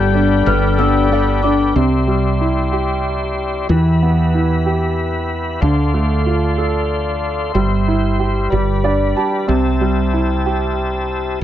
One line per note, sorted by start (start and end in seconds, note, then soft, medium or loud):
0.00 0.43 G1 medium
0.00 0.14 G3 medium
0.00 1.72 G3 medium
0.00 0.14 B3 medium
0.00 0.14 D4 medium
0.00 0.13 A4 loud
0.00 1.73 A4 medium
0.00 1.74 D5 medium
0.00 1.74 G5 medium
0.00 1.75 B5 medium
0.00 0.48 G6 medium
0.14 0.46 B3 soft
0.14 0.77 D4 medium
0.14 0.45 D4 soft
0.14 0.46 A4 medium
0.46 1.72 G1 medium
0.46 0.78 G3 medium
0.46 0.78 B3 medium
0.46 0.78 D4 medium
0.46 0.77 A4 medium
0.46 1.73 B4 medium
0.46 0.80 F6 medium
0.78 1.09 G3 medium
0.78 1.11 B3 medium
0.78 1.43 D4 medium
0.78 1.10 D4 medium
0.78 1.11 A4 medium
0.78 1.46 E6 medium
1.11 1.43 G3 medium
1.11 1.43 B3 medium
1.11 1.44 D4 medium
1.11 1.41 A4 medium
1.11 1.75 D5 medium
1.43 1.76 B3 soft
1.43 1.75 D4 medium
1.43 1.77 D4 soft
1.43 1.76 A4 medium
1.43 1.73 D6 medium
1.76 3.65 C2 medium
1.76 3.65 C3 medium
1.76 3.68 G4 medium
1.76 3.68 D5 soft
1.76 3.68 E5 soft
1.76 3.68 C6 medium
2.07 3.33 G3 soft
2.41 3.66 E4 soft
2.73 3.66 G4 soft
3.69 5.57 E2 medium
3.69 5.58 E3 medium
3.69 5.60 G4 medium
3.69 5.60 B4 medium
3.69 5.60 E5 medium
3.69 5.60 B5 medium
4.02 5.26 B3 soft
4.34 5.58 E4 soft
4.66 5.59 G4 medium
5.61 7.51 D2 medium
5.61 7.51 D3 medium
5.61 7.52 A4 medium
5.61 7.52 D5 medium
5.61 7.52 F5 medium
5.61 8.48 C6 medium
5.94 7.19 A3 soft
6.26 7.51 F4 soft
6.58 7.52 A4 soft
7.54 8.47 G1 medium
7.54 8.49 G3 medium
7.54 9.46 G4 medium
7.54 8.51 C5 medium
7.54 8.50 E5 medium
7.88 8.50 E4 soft
8.20 8.51 G4 soft
8.50 9.12 G1 medium
8.50 9.46 G3 medium
8.50 9.47 B4 soft
8.50 9.47 D5 soft
8.50 9.47 B5 medium
8.84 9.47 D4 soft
8.84 9.14 D5 medium
9.16 9.48 G4 soft
9.16 9.46 A5 medium
9.48 11.38 C2 medium
9.48 11.37 C3 medium
9.48 11.39 G4 medium
9.48 11.39 C5 medium
9.48 11.39 E5 medium
9.48 11.40 A5 medium
9.81 11.06 G3 soft
10.13 11.38 E4 soft
10.46 11.39 G4 soft